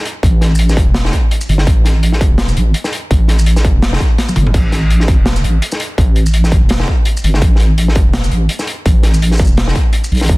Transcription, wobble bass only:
0.23 0.86 A1 loud
0.87 1.12 E1 loud
1.49 1.66 G1 medium
1.67 2.30 A1 loud
2.32 2.56 E1 loud
2.57 2.74 A1 loud
3.11 3.74 A1 loud
3.75 4.00 E1 loud
4.37 4.54 G1 medium
4.54 5.17 A1 loud
5.19 5.43 E1 loud
5.44 5.61 A1 loud
5.98 6.61 A1 loud
6.62 6.87 E1 loud
7.24 7.41 G1 medium
7.42 8.05 A1 loud
8.06 8.31 E1 loud
8.32 8.49 A1 medium
8.86 9.48 A1 loud
9.50 9.75 E1 loud
10.12 10.28 A#1 medium
10.30 10.38 A1 loud

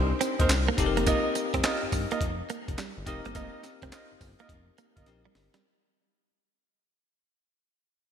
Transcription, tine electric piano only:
0.00 0.74 D4 medium
0.00 0.74 D#4 medium
0.00 0.75 G4 medium
0.00 0.75 C5 loud
0.77 3.02 C4 medium
0.77 3.03 D#4 medium
0.77 3.03 G4 medium
0.77 0.87 A4 medium
0.86 3.07 A#4 medium
3.06 5.02 C4 medium
3.06 5.03 D#4 medium
3.06 5.03 G4 medium
3.06 5.03 A#4 medium
5.07 5.64 C4 medium
5.07 5.64 D#4 medium
5.07 5.64 G4 medium
5.07 5.64 A#4 medium

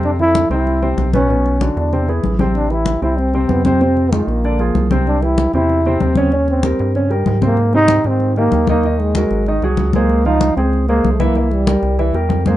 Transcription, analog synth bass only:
0.00 0.45 F2 loud
0.50 0.94 C2 medium
0.97 1.70 B1 loud
1.76 2.20 E2 medium
2.24 2.97 A1 loud
3.02 3.46 C2 medium
3.49 4.22 F2 loud
4.27 4.71 A#1 medium
4.75 5.48 C2 loud
5.54 5.97 E2 medium
6.01 6.74 D#2 medium
6.80 7.24 G2 loud
7.27 8.00 G#2 loud
8.05 8.49 G#2 medium
8.52 9.25 D#2 loud
9.31 9.60 G#1 medium
9.62 9.77 C2 medium
9.78 10.51 C#2 loud
10.57 11.01 C#2 medium
11.04 11.77 C2 medium
11.83 12.12 C2 loud
12.14 12.28 E2 medium
12.29 12.57 F2 loud

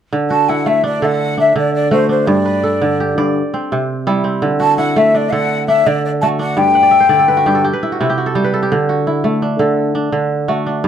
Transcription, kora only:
0.13 1.01 D3 medium
0.30 1.77 F#4 medium
0.49 2.06 E4 medium
0.66 1.91 A3 medium
0.84 1.37 D4 medium
1.02 1.54 D3 medium
1.02 2.34 A4 medium
1.38 2.09 D4 medium
1.56 2.33 D3 medium
1.91 3.91 A3 medium
1.91 3.06 F#4 medium
2.09 3.77 D4 medium
2.27 3.17 G2 medium
2.46 3.60 B4 medium
2.63 3.95 A4 medium
2.82 3.40 D3 medium
3.00 4.41 G4 medium
3.18 3.40 G2 medium
3.18 4.29 D5 medium
3.54 4.24 C4 medium
3.72 4.48 C3 medium
4.07 4.48 G3 medium
4.07 4.78 E4 medium
4.24 6.04 C4 medium
4.42 5.31 D3 medium
4.60 6.06 F#4 medium
4.78 6.35 E4 medium
4.96 6.22 A3 medium
5.14 5.68 D4 medium
5.32 5.85 D3 medium
5.32 6.64 A4 medium
5.68 6.39 D4 medium
5.86 6.62 D3 medium
6.23 8.22 A3 medium
6.23 7.36 F#4 medium
6.39 8.07 D4 medium
6.57 7.45 G2 medium
6.75 7.52 F#5 medium
6.83 7.09 D5 medium
6.91 7.94 E5 medium
7.00 7.34 C5 medium
7.09 7.68 D3 medium
7.09 8.20 D5 medium
7.19 7.54 A4 medium
7.28 7.73 B4 medium
7.37 7.70 F#4 medium
7.46 7.68 G2 medium
7.46 7.64 G4 medium
7.55 8.26 A4 medium
7.64 7.98 G4 medium
7.73 8.07 B4 medium
7.83 8.01 E4 medium
7.92 8.16 F#4 medium
8.01 8.75 C3 medium
8.01 9.07 E4 medium
8.10 8.35 G4 medium
8.18 8.41 F#4 medium
8.26 8.53 A4 medium
8.35 8.75 G3 medium
8.35 8.62 G4 medium
8.44 9.67 B4 medium
8.54 9.59 A4 medium
8.63 8.95 G4 medium
8.72 9.58 D3 medium
8.89 10.35 F#4 medium
9.07 10.64 E4 medium
9.24 10.48 A3 medium
9.42 9.94 D4 medium
9.59 10.11 D3 medium
9.59 10.88 A4 medium
9.95 10.66 D4 medium
10.12 10.88 D3 medium
10.48 10.88 A3 medium
10.48 10.88 F#4 medium
10.66 10.88 D4 medium
10.84 10.88 G2 medium

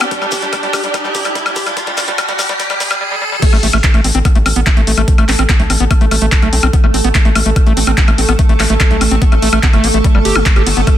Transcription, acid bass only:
0.01 0.05 B3 medium
0.11 0.14 G3 loud
0.22 0.26 G3 loud
0.32 0.42 G4 medium
0.42 0.47 G3 medium
0.53 0.55 G3 loud
0.63 0.67 G3 loud
0.73 0.83 G4 medium
0.84 0.88 G3 medium
0.94 0.97 G3 loud
1.04 1.09 G3 loud
1.15 1.25 G4 medium
1.25 1.29 G3 medium
1.35 1.38 G3 loud
1.46 1.50 G3 loud
1.56 1.66 G4 medium
1.67 1.71 G3 medium
1.77 1.79 G3 loud
1.87 1.91 G3 loud
1.98 2.00 G3 loud
2.08 2.12 G3 loud
2.18 2.21 G3 loud
2.29 2.33 G3 loud
2.39 2.41 G3 loud
2.49 2.54 G3 loud
2.60 2.62 G3 loud
2.70 2.74 G3 loud
2.80 2.83 G3 loud
2.91 2.95 G3 loud
3.01 3.04 G3 loud
3.11 3.16 G3 loud
3.22 3.24 G3 loud
3.32 3.36 G3 loud
3.42 3.45 A3 loud
3.53 3.57 A3 loud
3.63 3.67 A3 medium
3.73 3.78 A3 medium
3.94 4.01 A3 medium
4.04 4.07 C4 medium
4.15 4.19 C4 medium
4.25 4.28 B3 medium
4.35 4.38 A3 loud
4.46 4.48 C4 medium
4.56 4.60 B3 medium
4.67 4.69 A3 loud
4.77 4.81 A3 loud
4.87 4.91 A3 medium
4.98 5.02 A3 medium
5.18 5.25 A3 medium
5.29 5.31 C4 medium
5.39 5.43 C4 medium
5.49 5.52 B3 medium
5.60 5.62 A3 loud
5.70 5.73 C4 medium
5.80 5.85 B3 medium
5.91 5.93 A3 loud
6.01 6.05 A3 loud
6.11 6.16 A3 medium
6.22 6.26 A3 medium
6.42 6.49 A3 medium
6.53 6.55 C4 medium
6.63 6.67 C4 medium
6.73 6.76 B3 medium
6.84 6.86 A3 loud
6.94 6.97 C4 medium
7.04 7.09 B3 medium
7.15 7.17 A3 loud
7.25 7.29 A3 loud
7.36 7.40 A3 medium
7.46 7.50 A3 medium
7.67 7.73 A3 medium
7.77 7.79 C4 medium
7.87 7.92 C4 medium
7.98 8.00 B3 medium
8.08 8.10 A3 loud
8.18 8.21 C4 medium
8.29 8.33 B3 medium
8.39 8.41 A3 loud
8.49 8.54 A3 loud
8.60 8.64 A3 medium
8.70 8.74 A3 medium
8.91 8.97 A3 medium
9.01 9.04 C4 medium
9.11 9.16 C4 medium
9.22 9.24 B3 medium
9.32 9.35 A3 loud
9.42 9.49 A3 medium
9.53 9.59 A3 loud
9.63 9.67 B3 loud
9.73 9.85 A3 loud
9.84 9.88 B3 loud
9.94 9.98 A3 medium
10.04 10.07 G3 loud
10.15 10.19 G3 loud
10.25 10.37 G4 medium
10.35 10.40 G3 medium
10.56 10.63 G4 medium
10.66 10.69 B3 medium
10.77 10.81 B3 medium
10.87 10.90 A3 medium

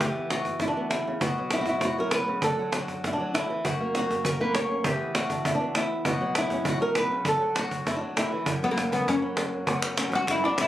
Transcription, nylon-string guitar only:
0.00 1.22 E3 medium
0.00 0.31 G4 medium
0.16 0.76 B3 medium
0.31 0.92 F#4 medium
0.62 0.67 E4 medium
0.68 0.90 D4 medium
0.77 1.20 B3 medium
0.90 1.07 D3 medium
0.90 1.21 E4 medium
1.07 1.22 C#3 medium
1.22 2.13 B2 medium
1.22 1.59 F#4 medium
1.38 1.98 F#3 medium
1.53 1.67 E4 medium
1.61 1.84 F#4 medium
1.69 2.14 E4 medium
1.85 1.99 F#4 medium
1.98 2.59 F#3 medium
1.98 2.13 A#4 medium
2.13 2.27 B2 medium
2.13 2.43 B4 medium
2.28 2.43 C#3 medium
2.43 3.34 D3 medium
2.43 2.74 A4 loud
2.59 3.19 F#3 medium
2.75 3.35 F#4 medium
3.07 3.13 E4 medium
3.13 3.34 D4 medium
3.20 3.50 F#3 medium
3.34 3.50 D3 medium
3.34 3.64 E4 loud
3.50 3.65 E3 medium
3.65 4.86 F#2 medium
3.65 3.95 F#4 medium
3.80 4.39 A#3 medium
3.97 4.26 F#4 medium
4.10 4.25 G4 medium
4.26 4.40 A#4 loud
4.40 4.84 A#3 medium
4.40 4.55 B4 medium
4.55 4.85 C#5 loud
4.71 4.84 C#4 soft
4.85 6.06 E3 medium
4.85 5.15 G4 medium
5.00 5.59 B3 medium
5.16 5.76 F#4 medium
5.31 5.46 D4 soft
5.47 5.54 E4 loud
5.55 5.77 D4 medium
5.60 6.04 B3 medium
5.77 6.07 E4 medium
6.06 6.95 B2 medium
6.06 6.68 F#4 medium
6.21 6.80 F#3 medium
6.38 6.98 E4 medium
6.52 7.26 C#4 soft
6.69 6.81 F#4 loud
6.80 7.41 F#3 medium
6.80 6.97 A#4 medium
6.97 7.11 B2 medium
6.97 7.27 B4 loud
7.12 7.26 C#3 medium
7.26 8.15 D3 medium
7.26 7.58 A4 loud
7.41 8.01 F#3 medium
7.59 8.19 F#4 loud
7.87 7.96 E4 medium
7.96 8.18 D4 medium
8.01 8.32 F#3 medium
8.17 8.32 D3 medium
8.17 8.48 E4 medium
8.32 8.47 E3 medium
8.32 9.70 F#4 medium
8.46 9.67 F#2 medium
8.63 9.21 F#3 medium
8.78 9.06 A#3 soft
8.93 9.52 C#4 soft
9.08 9.36 A#3 soft
9.22 9.66 F#3 medium
9.37 9.66 A#3 soft
9.53 9.69 C#4 soft
9.68 10.68 F#2 medium
9.68 10.12 F#3 medium
9.68 9.83 B3 medium
9.68 9.98 C#4 medium
9.68 10.28 F#4 medium
9.83 10.43 B3 medium
9.99 10.68 C#4 medium
10.13 10.68 F#3 medium
10.29 10.68 F#4 medium
10.44 10.68 B3 medium
10.58 10.68 C#3 medium

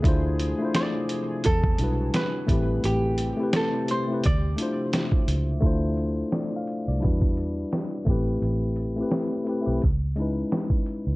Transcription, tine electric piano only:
0.02 0.40 A3 medium
0.02 0.41 D4 medium
0.02 0.42 E4 medium
0.07 0.42 F4 medium
0.07 0.43 C5 medium
0.59 1.42 A3 medium
0.59 1.43 D4 medium
0.59 1.43 E4 medium
0.63 1.44 F4 medium
0.63 1.45 C5 medium
1.78 2.48 G3 medium
1.78 2.49 D4 medium
1.78 2.49 E4 medium
1.82 2.50 F#4 medium
1.82 2.51 B4 medium
2.47 3.17 A3 medium
2.47 3.18 C4 medium
2.47 3.19 E4 medium
2.52 3.20 G4 medium
2.52 3.21 B4 medium
3.37 3.84 A3 medium
3.37 3.85 C4 medium
3.37 3.86 E4 medium
3.41 3.86 G4 medium
3.41 3.87 B4 medium
4.08 4.23 A3 medium
4.08 4.23 C4 medium
4.08 4.24 E4 medium
4.12 4.25 G4 medium
4.12 4.25 B4 medium
4.57 5.31 A3 medium
4.57 5.32 D4 medium
4.57 5.32 E4 medium
4.61 5.33 F4 medium
4.61 5.34 C5 medium
5.60 5.98 A3 loud
5.60 5.99 D4 medium
5.60 6.00 E4 medium
5.65 6.00 F4 medium
5.65 6.01 C5 loud
6.34 6.53 D5 medium
6.56 6.88 F5 medium
6.88 7.21 D5 medium
6.98 7.08 F#3 medium
6.98 7.87 D4 medium
6.98 7.88 E4 medium
7.03 7.90 G3 medium
7.03 7.89 F#4 medium
7.03 7.89 B4 medium
8.05 8.76 A3 medium
8.05 8.76 C4 medium
8.05 8.77 E4 medium
8.10 8.78 G4 medium
8.10 8.79 B4 loud
8.96 9.33 A3 medium
8.96 9.34 C4 medium
8.96 9.34 E4 medium
9.01 9.35 G4 medium
9.01 9.36 B4 medium
9.45 9.60 A3 medium
9.45 9.60 C4 medium
9.45 9.61 E4 medium
9.49 9.62 G4 medium
9.49 9.63 B4 medium
9.62 9.79 A3 medium
9.62 9.79 C4 medium
9.62 9.80 E4 medium
9.66 9.81 G4 medium
9.66 9.82 B4 medium
10.16 10.90 G#3 medium
10.16 10.90 C#4 medium
10.16 10.91 D#4 medium
10.20 10.92 E4 medium
10.20 10.92 B4 medium

